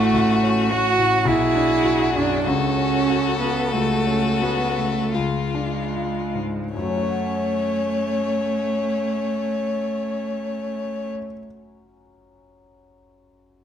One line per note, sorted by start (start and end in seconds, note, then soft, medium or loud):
0.00 0.12 A1 medium
0.00 0.31 A2 medium
0.00 0.73 A3 loud
0.00 0.43 C#4 medium
0.00 0.71 F#4 medium
0.00 1.23 F#4 medium
0.00 1.28 F#4 medium
0.14 1.23 A1 medium
0.43 0.88 C#4 medium
0.71 1.16 F#4 medium
0.71 1.29 F#4 loud
0.99 1.27 A2 soft
1.25 2.41 B1 medium
1.25 2.15 E4 medium
1.25 2.43 F#4 medium
1.25 2.42 G#4 medium
1.56 2.03 D4 medium
1.85 2.33 F#4 medium
2.16 2.46 F#2 medium
2.16 2.49 D4 medium
2.43 3.72 C#2 medium
2.43 3.69 F#4 medium
2.43 5.16 A4 medium
2.48 3.39 C#4 medium
2.77 3.27 C#4 soft
3.09 3.59 F#4 medium
3.40 3.92 C#3 soft
3.40 3.73 B3 medium
3.71 5.11 C#2 medium
3.71 4.43 A3 medium
3.71 5.10 F#4 medium
4.07 4.62 C#4 soft
4.41 4.79 B3 medium
4.41 5.00 F#4 soft
4.78 5.14 C#3 soft
4.78 5.17 A3 medium
5.14 6.70 C#2 medium
5.14 6.75 G#3 medium
5.14 6.41 F4 soft
5.14 5.93 F4 medium
5.55 6.19 D4 soft
5.95 6.59 F4 soft
6.35 6.74 G#2 soft
6.73 11.11 F#2 soft
6.73 11.11 A3 medium
6.73 11.09 C#4 medium
6.73 11.10 C#5 medium
6.82 11.18 F#3 soft
6.90 11.26 C#4 soft
6.97 11.32 F#4 soft
7.03 11.39 C#5 soft
7.11 11.46 F#5 soft